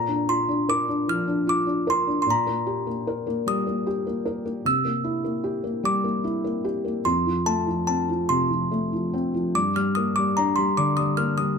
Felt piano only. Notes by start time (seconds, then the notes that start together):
Already playing: A#2
0.08 D4
0.29 F4
0.49 D4
0.69 A#4
0.88 D4
1.08 F3
1.28 D4
1.47 F4
1.67 D4
1.87 A#4
2.07 D4
2.26 A#2
2.47 A#3
2.67 G4
2.87 A#3
3.07 A#4
3.27 A#3
3.46 G3
3.67 A#3
3.87 G4
4.07 A#3
4.25 A#4
4.46 A#3
4.65 C3
4.85 A#3
5.04 E4
5.24 A#3
5.44 G4
5.64 A#3
5.84 G3
6.04 A#3
6.24 E4
6.44 A#3
6.64 G4
6.85 A#3
7.05 F2
7.26 F3
7.46 A3
7.67 F3
7.88 C4
8.09 F3
8.30 C3
8.50 F3
8.71 A3
8.93 F3
9.13 C4
9.34 F3
9.55 G2
9.76 G3
9.97 A#3
10.18 G3
10.38 D4
10.58 G3
10.77 D3
10.98 G3
11.18 A#3
11.38 G3